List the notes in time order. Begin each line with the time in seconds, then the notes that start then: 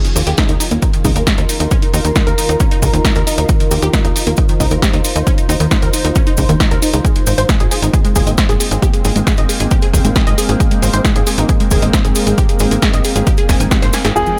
Already playing: D#3 D#4 F4 A#4
0.05 D#3, closed hi-hat, cabasa
0.16 D#2 G4, open hi-hat, cabasa
0.26 D#2 G4, closed hi-hat, cabasa
0.37 D#4, kick, snare, closed hi-hat, cabasa
0.49 D#2 D#4, closed hi-hat, cabasa
0.60 D#4, open hi-hat, cabasa
0.71 D#2 A#3, closed hi-hat, cabasa
0.82 D#4, kick, closed hi-hat, cabasa
0.94 D#3, closed hi-hat, cabasa
1.05 C#2 D#4, kick, open hi-hat, cabasa
1.16 D#2 A#4, closed hi-hat, cabasa
1.27 G4, kick, snare, closed hi-hat, cabasa
1.38 D#2 D#4, closed hi-hat, cabasa
1.49 D#4, open hi-hat, cabasa
1.60 D#2 D#4, closed hi-hat, cabasa
1.71 C#4, kick, closed hi-hat, cabasa
1.82 D#4, closed hi-hat, cabasa
1.94 D#2 D#4, open hi-hat, cabasa
2.05 D#2 D#3, closed hi-hat, cabasa
2.16 D#4, kick, snare, closed hi-hat, cabasa
2.27 D#2 A#4, closed hi-hat, cabasa
2.38 D#4, open hi-hat, cabasa
2.49 D#2 D#4, closed hi-hat, cabasa
2.60 C#4, kick, closed hi-hat, cabasa
2.71 D#4, closed hi-hat, cabasa
2.82 C#2 D#4, kick, open hi-hat, cabasa
2.94 D#2 D#3, closed hi-hat, cabasa
3.05 D#4, kick, snare, closed hi-hat, cabasa
3.15 D#2 A#4, closed hi-hat, cabasa
3.27 D#4, open hi-hat, cabasa
3.38 D#2 D#4, closed hi-hat, cabasa
3.49 D#4 C5, kick, closed hi-hat, cabasa
3.60 D#3, closed hi-hat, cabasa
3.71 D#2 G4, open hi-hat, cabasa
3.82 D#2 G4, closed hi-hat, cabasa
3.93 D#4, kick, snare, closed hi-hat, cabasa
4.05 D#2 D#4, closed hi-hat, cabasa
4.16 D#4, open hi-hat, cabasa
4.26 D#2 A#3, closed hi-hat, cabasa
4.37 D#4, kick, closed hi-hat, cabasa
4.49 D#3, closed hi-hat, cabasa
4.60 C#2 D#4, kick, open hi-hat, cabasa
4.71 D#2 A#4, closed hi-hat, cabasa
4.82 G4, kick, snare, closed hi-hat, cabasa
4.93 D#2 D#4, closed hi-hat, cabasa
5.04 D#4, open hi-hat, cabasa
5.16 D#2 D#4, closed hi-hat, cabasa
5.27 C#4, kick, closed hi-hat, cabasa
5.38 D#4, closed hi-hat, cabasa
5.49 D#2 D#4, open hi-hat, cabasa
5.60 D#2 D#3, closed hi-hat, cabasa
5.71 D#4, kick, snare, closed hi-hat, cabasa
5.82 D#2 A#4, closed hi-hat, cabasa
5.93 D#4, open hi-hat, cabasa
6.05 D#2 D#4, closed hi-hat, cabasa
6.15 C#4, kick, closed hi-hat, cabasa
6.27 D#4, closed hi-hat, cabasa
6.37 C#2 D#4, kick, open hi-hat, cabasa
6.49 D#2 D#3, closed hi-hat, cabasa
6.60 D#4, kick, snare, closed hi-hat, cabasa
6.71 D#2 A#4, closed hi-hat, cabasa
6.82 D#4, open hi-hat, cabasa
6.93 C#2 D#4, closed hi-hat, cabasa
7.05 G#3 A#3 C4 G#4, kick, closed hi-hat, cabasa
7.15 G#3, closed hi-hat, cabasa
7.26 G#1 C5, open hi-hat, cabasa
7.38 G#1 C5, closed hi-hat, cabasa
7.49 G#4, kick, snare, closed hi-hat, cabasa
7.60 G#1 G#4, closed hi-hat, cabasa
7.71 G#4, open hi-hat, cabasa
7.82 G#1 D#4, closed hi-hat, cabasa
7.94 G#4, kick, closed hi-hat, cabasa
8.05 G#3, closed hi-hat, cabasa
8.16 D#1 G#4, kick, open hi-hat, cabasa
8.27 G#1 D#5, closed hi-hat, cabasa
8.38 C5, kick, snare, closed hi-hat, cabasa
8.49 G#1 G#4, closed hi-hat, cabasa
8.60 G#4, open hi-hat, cabasa
8.71 G#1 G#4, closed hi-hat, cabasa
8.82 G4, kick, closed hi-hat, cabasa
8.94 G#4, closed hi-hat, cabasa
9.05 G#1 G#4, open hi-hat, cabasa
9.16 G#1 G#3, closed hi-hat, cabasa
9.27 G#4, kick, snare, closed hi-hat, cabasa
9.37 G#1 D#5, closed hi-hat, cabasa
9.49 G#4, open hi-hat, cabasa
9.60 G#1 G#4, closed hi-hat, cabasa
9.71 G4, kick, closed hi-hat, cabasa
9.82 G#4, closed hi-hat, cabasa
9.94 D#1 G#4, kick, open hi-hat, cabasa
10.05 G#1 G#3, closed hi-hat, cabasa
10.16 G#4, kick, snare, closed hi-hat, cabasa
10.27 G#1 D#5, closed hi-hat, cabasa
10.38 G#4, open hi-hat, cabasa
10.49 G#1 G#4, closed hi-hat, cabasa
10.60 G#4, kick, closed hi-hat, cabasa
10.71 G#3, closed hi-hat, cabasa
10.82 G#1 C5, open hi-hat, cabasa
10.93 G#1 C5, closed hi-hat, cabasa
11.05 G#4, kick, snare, closed hi-hat, cabasa
11.16 G#1 G#4, closed hi-hat, cabasa
11.27 G#4, open hi-hat, cabasa
11.38 G#1 D#4, closed hi-hat, cabasa
11.49 G#4, kick, closed hi-hat, cabasa
11.60 G#3, closed hi-hat, cabasa
11.71 D#1 G#4, kick, open hi-hat, cabasa
11.82 G#1 D#5, closed hi-hat, cabasa
11.93 C5, kick, snare, closed hi-hat, cabasa
12.05 G#1 G#4, closed hi-hat, cabasa
12.15 G#4, open hi-hat, cabasa
12.27 G#1 G#4, closed hi-hat, cabasa
12.38 G4, kick, closed hi-hat, cabasa
12.49 G#4, closed hi-hat, cabasa
12.59 G#1 G#4, open hi-hat, cabasa
12.71 G#1 G#3, closed hi-hat, cabasa
12.82 G#4, kick, snare, closed hi-hat, cabasa
12.93 G#1 D#5, closed hi-hat, cabasa
13.04 G#4, open hi-hat, cabasa
13.16 G#1 G#4, closed hi-hat, cabasa
13.27 G4, kick, closed hi-hat, cabasa
13.37 G#4, closed hi-hat, cabasa
13.49 D#1 G#5, kick, snare, open hi-hat, cabasa
13.60 G#1 G#5, closed hi-hat, cabasa
13.71 G4, kick, snare, closed hi-hat, cabasa
13.82 G#1 C5, snare, closed hi-hat, cabasa
13.93 G#5, snare, open hi-hat, cabasa
14.05 G#1 G#4, snare, closed hi-hat, cabasa
14.16 F1 F3 G#3 C4 F4 G#4, impact, cabasa
14.26 F3, cabasa